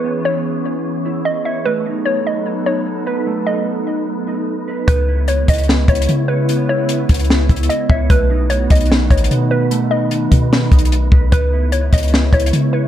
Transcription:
<<
  \new Staff \with { instrumentName = "Synth pluck" } { \time 4/4 \key cis \minor \tempo 4 = 149 r8 cis''8 r2 dis''8 e''8 | b'4 cis''8 dis''4 cis''4 b'8 | r8 dis''8 r2. | b'4 cis''8 dis''4 cis''4 b'8 |
r8 cis''8 r2 dis''8 e''8 | b'4 cis''8 dis''4 cis''4 b'8 | r8 dis''8 r2. | b'4 cis''8 dis''4 cis''4 b'8 | }
  \new Staff \with { instrumentName = "Clean electric guitar" } { \time 4/4 \key cis \minor <b cis''>8 e'2 e'4 cis''8 | a8 dis'2 dis'4 b'8 | a8 dis'2 dis'4 b'8 | b8 e'2 e'4 cis''8 |
b8 e'2 e'4 cis''8 | a8 dis'2 dis'4 b'8 | a8 dis'2 dis'4 b'8 | b8 e'2 e'4 cis''8 | }
  \new Staff \with { instrumentName = "Synth texture" } { \time 4/4 \key cis \minor <b e' cis''>1 | <a dis' b'>1~ | <a dis' b'>1 | <b e' cis''>1~ |
<b e' cis''>1 | <a dis' b'>1~ | <a dis' b'>1 | <b e' cis''>1 | }
  \new Staff \with { instrumentName = "Ambient pad" } { \time 4/4 \key cis \minor << { <e b gis'>1 | <fis b a'>1~ | <fis b a'>1 | <cis gis e'>1~ |
<cis gis e'>1 | <dis a fis'>1~ | <dis a fis'>1 | <cis gis e'>1 | } \\ { cis'1 | dis'1~ | dis'1 | b1~ |
b1~ | b1~ | b1~ | b1 | } >> }
  \new Staff \with { instrumentName = "808-style bass" } { \clef bass \time 4/4 \key cis \minor r1 | r1 | r1 | cis,4. cis,4 cis,8 cis4~ |
cis4. cis,4 cis,8 r8 cis,8 | b,,4. b,,4 a,,8 b,4~ | b,4. b,4 b,,4 b,,8 | cis,4. cis,4 cis,8 cis4 | }
  \new DrumStaff \with { instrumentName = "Drums" } \drummode { \time 4/4 r4 r4 r4 r4 | r4 r4 r4 r4 | r4 r4 r4 r4 | <hh bd>4 hh8 <hh bd>32 hh32 hh32 hh32 \tuplet 3/2 { sn16 r16 r16 <hh bd>16 hh16 hh16 } hh4 |
hh4 hh8 <hh bd>32 hh32 hh32 hh32 \tuplet 3/2 { sn16 r16 r16 <hh bd>16 hh16 hh16 } hh8 bd8 | <hh bd>4 hh8 <hh bd>32 hh32 hh32 hh32 \tuplet 3/2 { sn16 r16 r16 <hh bd>16 hh16 hh16 } hh4 | hh4 hh8 <hh bd>8 \tuplet 3/2 { sn16 r16 r16 <hh bd>16 hh16 hh16 } hh8 bd8 | <hh bd>4 hh8 <hh bd>32 hh32 hh32 hh32 \tuplet 3/2 { sn16 r16 r16 <hh bd>16 hh16 hh16 } hh4 | }
>>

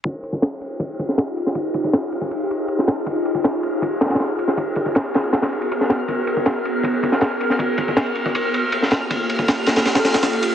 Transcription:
<<
  \new Staff \with { instrumentName = "Synth texture" } { \time 4/4 \key aes \lydian \tempo 4 = 159 f'''1~ | f'''1~ | f'''1~ | f'''1~ |
f'''1~ | f'''1~ | f'''1 | }
  \new Staff \with { instrumentName = "Ambient pad" } { \time 4/4 \key aes \lydian <ees' f' g' aes'>1~ | <ees' f' g' aes'>1~ | <ees' f' g' aes'>1 | <ces' ges' bes'>1~ |
<ces' ges' bes'>1~ | <ces' ges' bes'>2 <bes f' g' a'>2~ | <bes f' g' a'>1 | }
  \new DrumStaff \with { instrumentName = "Drums" } \drummode { \time 4/4 <bd cymr>8 cymr16 bd16 <cymr sn>8 cymr8 <bd cymr>8 <bd cymr>16 sn16 <cymr sn>16 cymr16 cymr16 sn16 | <bd cymr>8 <bd cymr>16 bd16 <cymr sn>16 cymr16 cymr16 bd16 cymr8 cymr8 cymr16 sn16 <cymr sn>8 | <bd cymr>8 cymr16 bd16 <cymr sn>8 cymr8 <bd cymr>8 <cymr sn>32 <cymr sn>32 <cymr sn>32 <cymr sn>32 <cymr sn>16 cymr16 cymr16 sn16 | <bd cymr>8 <bd cymr>16 bd16 <cymr sn>16 cymr16 <cymr sn>16 cymr16 <cymr sn>16 <cymr sn>16 cymr16 cymr16 cymr16 sn16 <cymr sn>8 |
<bd cymr>8 cymr16 bd16 <cymr sn>8 cymr8 <bd cymr>8 <bd cymr>16 sn16 <cymr sn>16 cymr16 cymr16 sn16 | <bd cymr>8 <bd cymr>16 bd16 <cymr sn>16 cymr16 cymr16 bd16 cymr8 cymr8 cymr16 sn16 <cymr sn>8 | <bd cymr>8 cymr16 bd16 <cymr sn>8 <cymr sn>16 <cymr sn>16 <cymr sn>16 <cymr sn>16 <cymr sn>16 <cymr sn>16 <cymr sn>16 cymr16 cymr8 | }
>>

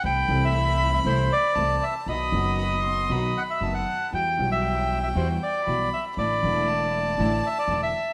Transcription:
<<
  \new Staff \with { instrumentName = "Violin" } { \time 4/4 \key a \dorian \tempo 4 = 118 b''2. a''4 | b''4 b''8 c'''8 b''4 a''4 | g''2. b''4 | b''4 a''2. | }
  \new Staff \with { instrumentName = "Bandoneon" } { \time 4/4 \key a \dorian g''8. e''4 e''16 c''8 d''4 e''8 | dis''2~ dis''8 fis''16 e''8 fis''8. | g''8. e''4 e''16 c''8 d''4 e''8 | d''2~ d''8 e''16 d''8 e''8. | }
  \new Staff \with { instrumentName = "String section" } { \time 4/4 \key a \dorian <a c' e'>8 <a c' e'>4. <a c' e'>8 r8 <a c' e'>8 r8 | <b dis' fis'>8 <b dis' fis'>4. <b dis' fis'>8 r8 <b dis' fis'>8 r8 | <g e' fis'>8 <fis g e'>4. <g e' fis'>8 r8 <g e' fis'>8 r8 | <a d' e'>8 <a d' e'>4. <a d' e'>8 r8 <a d' e'>8 r8 | }
  \new Staff \with { instrumentName = "Grand piano" } { \clef bass \time 4/4 \key a \dorian <c, c e a c' a'>8 <c, c e a c' a'>4. <c, c e a c' a'>8 r8 <c, c e a c' a'>8 r8 | <b,, b, dis fis b fis'>8 <fis,, fis, dis fis b fis'>4. <b,, b, dis fis b fis'>8 r8 <fis,, fis, dis fis b fis'>8 r8 | <e, e g b fis'>8 <b,, b, e fis g b>4. <e, e g b fis'>8 r8 <b,, b, e g b fis'>8 r8 | <a,, a, d e a e'>8 <e,, e, d e a e'>4. <a,, a, d e a e'>8 r8 <e,, e, d e a e'>8 r8 | }
  \new Staff \with { instrumentName = "Upright bass" } { \clef bass \time 4/4 \key a \dorian c,8 c,4. c,8 r8 c,8 r8 | b,,8 fis,,4. b,,8 r8 fis,,8 r8 | e,8 b,,4. e,8 r8 b,,8 r8 | a,,8 e,,4. a,,8 r8 e,,8 r8 | }
>>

